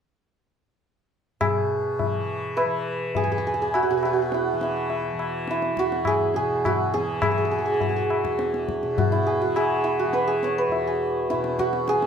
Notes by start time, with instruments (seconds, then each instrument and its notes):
1.40 tanpura B2, santur G#4, tabla na, tabla ge
1.99 tanpura E3, tabla tin, tabla ge
2.57 santur B4, tabla na
2.65 tanpura E3
3.15 santur G#4, tabla tin, tabla ge
3.24 tanpura E2, santur G#4
3.32 santur G#4
3.38 santur G#4
3.47 santur G#4
3.54 santur G#4
3.62 santur G#4
3.74 santur F#4, tabla na
3.83 santur F#4
3.90 tanpura B2, santur F#4
3.97 santur F#4
4.03 santur F#4, tabla na
4.13 santur F#4
4.22 santur F#4
4.32 santur E4, tabla te
4.53 tanpura E3
4.61 santur E4, tabla te
4.90 tabla tin
5.13 tanpura E3
5.19 tabla na
5.48 santur E4, tabla te
5.62 tabla te
5.76 tanpura E2, santur F#4, tabla ke
5.92 tabla te
6.05 santur G#4, tabla na, tabla ge
6.34 tanpura B2, santur G#4, tabla te
6.65 santur F#4, tabla na, tabla ge
6.94 tanpura E3, santur G#4, tabla te
7.22 santur G#4, tabla na, tabla ge
7.31 santur G#4
7.38 santur G#4
7.45 santur G#4
7.51 santur G#4
7.59 tanpura E3, santur G#4
7.66 santur G#4
7.74 santur G#4
7.81 santur G#4, tabla tin, tabla ge
7.89 santur G#4
7.96 santur G#4
8.10 tabla na
8.23 tanpura E2, tabla ke
8.39 tabla te
8.54 tabla te
8.69 tabla ke
8.83 tanpura B2, tabla te
8.98 santur F#4, tabla tin, tabla ge
9.12 santur E4
9.27 santur G#4
9.41 tanpura E3, santur F#4
9.56 santur G#4, tabla na
9.84 santur E4
9.99 santur F#4
10.07 tanpura E3
10.13 santur B4, tabla te
10.27 santur G#4
10.43 santur C#5, tabla te
10.58 santur B4
10.68 tanpura E2
10.72 tabla tin
10.87 santur G#4
11.30 tanpura B2, santur E4, tabla te
11.44 tabla te
11.59 santur F#4, tabla ke
11.73 tabla te
11.88 santur G#4, tabla te
11.94 tanpura E3
12.02 tabla te